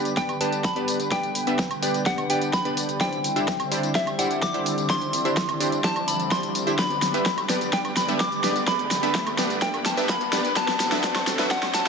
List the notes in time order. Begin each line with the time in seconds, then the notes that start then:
Already playing: D3 G3 B3 D4 G4 B4 D5 B5, riser
0.05 closed hi-hat, tambourine
0.17 B3 D4 G4 B4 D5 G5, kick, snare, closed hi-hat, tambourine
0.29 closed hi-hat, tambourine, high woodblock
0.41 B3 D4 G4 B4 D5 A5, open hi-hat, tambourine
0.53 closed hi-hat, tambourine
0.64 B5, kick, snare, closed hi-hat, tambourine
0.76 B3 D4 G4 B4 D5, closed hi-hat, tambourine
0.88 open hi-hat, tambourine
1.00 closed hi-hat, tambourine
1.11 B3 D4 G4 B4 D5 G5, kick, snare, closed hi-hat, tambourine
1.23 closed hi-hat, tambourine
1.35 open hi-hat, tambourine
1.47 B3 D4 G4 B4 E5, closed hi-hat, tambourine
1.59 kick, snare, closed hi-hat, tambourine
1.71 closed hi-hat, tambourine, high woodblock
1.83 B3 D4 G4 B4 D5, open hi-hat, tambourine
1.94 closed hi-hat, tambourine
2.06 B3 D4 G4 B4 D5 F#5, kick, snare, closed hi-hat, tambourine
2.18 closed hi-hat, tambourine, high woodblock
2.30 B3 D4 G4 B4 D5 G5, open hi-hat, tambourine
2.42 closed hi-hat, tambourine
2.53 B5, kick, snare, closed hi-hat, tambourine
2.65 B3 D4 G4 B4 D5, closed hi-hat, tambourine
2.77 open hi-hat, tambourine
2.89 closed hi-hat, tambourine
3.00 C4 D4 E4 G4 C5 D5 G5, kick, snare, closed hi-hat, tambourine
3.13 closed hi-hat, tambourine
3.24 open hi-hat, tambourine
3.36 D4 E4 G4 C5 E5, closed hi-hat, tambourine
3.48 kick, snare, closed hi-hat, tambourine
3.60 closed hi-hat, tambourine, high woodblock
3.71 D4 E4 G4 C5 D5, open hi-hat, tambourine
3.83 closed hi-hat, tambourine
3.95 D4 E4 G4 C5 D5 E5, kick, snare, closed hi-hat, tambourine
4.07 closed hi-hat, tambourine, high woodblock
4.19 D4 E4 G4 C5 D5 F#5, open hi-hat, tambourine
4.31 closed hi-hat, tambourine
4.42 D6, kick, snare, closed hi-hat, tambourine
4.54 D4 E4 G4 C5 D5, closed hi-hat, tambourine
4.66 open hi-hat, tambourine
4.78 closed hi-hat, tambourine
4.89 D4 E4 G4 C5 D5 C6, kick, snare, closed hi-hat, tambourine
5.02 closed hi-hat, tambourine
5.13 open hi-hat, tambourine
5.25 D4 E4 G4 C5 E5, closed hi-hat, tambourine
5.37 kick, snare, closed hi-hat, tambourine
5.49 closed hi-hat, tambourine, high woodblock
5.60 D4 E4 G4 C5 D5, open hi-hat, tambourine
5.72 closed hi-hat, tambourine
5.84 D4 E4 G4 C5 D5 A5, kick, snare, closed hi-hat, tambourine
5.96 closed hi-hat, tambourine, high woodblock
6.08 B5, open hi-hat, tambourine
6.20 closed hi-hat, tambourine
6.31 D4 E4 G4 C5 D5 C6, kick, snare, closed hi-hat, tambourine
6.43 closed hi-hat, tambourine
6.55 open hi-hat, tambourine
6.67 D4 E4 G4 C5 E5, closed hi-hat, tambourine
6.79 B3 D4 G4 B4 D5 B5, kick, snare, closed hi-hat, tambourine
6.91 closed hi-hat, tambourine
7.02 snare, open hi-hat, tambourine
7.14 B3 D4 G4 B4 E5, closed hi-hat, tambourine
7.26 kick, snare, closed hi-hat, tambourine
7.38 closed hi-hat, tambourine, high woodblock
7.49 B3 D4 G4 B4 D5, snare, open hi-hat, tambourine
7.61 closed hi-hat, tambourine
7.73 B3 D4 G4 B4 D5 G5, kick, snare, closed hi-hat, tambourine
7.85 closed hi-hat, tambourine, high woodblock
7.97 B5, snare, open hi-hat, tambourine
8.08 B3 D4 G4 B4 E5, closed hi-hat, tambourine
8.20 D6, kick, snare, closed hi-hat, tambourine
8.32 closed hi-hat, tambourine
8.44 B3 D4 G4 B4 D5, snare, open hi-hat, tambourine
8.56 closed hi-hat, tambourine
8.68 B3 D4 G4 B4 D5 B5, kick, snare, closed hi-hat, tambourine
8.79 closed hi-hat, tambourine
8.91 snare, open hi-hat, tambourine
9.03 B3 D4 G4 B4 E5, closed hi-hat, tambourine
9.15 kick, snare, closed hi-hat, tambourine
9.27 closed hi-hat, tambourine, high woodblock
9.38 B3 D4 G4 B4 D5, snare, open hi-hat, tambourine
9.50 closed hi-hat, tambourine
9.62 B3 D4 G4 B4 D5 G5, kick, snare, closed hi-hat, tambourine
9.74 closed hi-hat, tambourine, high woodblock
9.86 A5, snare, open hi-hat, tambourine
9.97 B3 D4 G4 B4 E5, closed hi-hat, tambourine
10.09 B5, kick, snare, closed hi-hat, tambourine
10.21 closed hi-hat, tambourine
10.33 B3 D4 G4 B4 D5, snare, open hi-hat, tambourine
10.45 closed hi-hat, tambourine
10.56 D3 F#3 A3 B3 D4 F#4 A4 B4 D5 A5, kick, snare, closed hi-hat, tambourine
10.68 snare, closed hi-hat, tambourine
10.80 snare, open hi-hat, tambourine
10.92 B3 D4 F#4 B4 E5, snare, closed hi-hat, tambourine
11.04 B3 D4 F#4 B4 D5, kick, snare, closed hi-hat, tambourine
11.16 snare, closed hi-hat, tambourine, high woodblock
11.27 snare, open hi-hat, tambourine
11.39 B3 D4 F#4 B4 E5, snare, closed hi-hat, tambourine
11.51 F#5, kick, snare, closed hi-hat, tambourine
11.63 snare, closed hi-hat, tambourine, high woodblock
11.74 A5, snare, open hi-hat, tambourine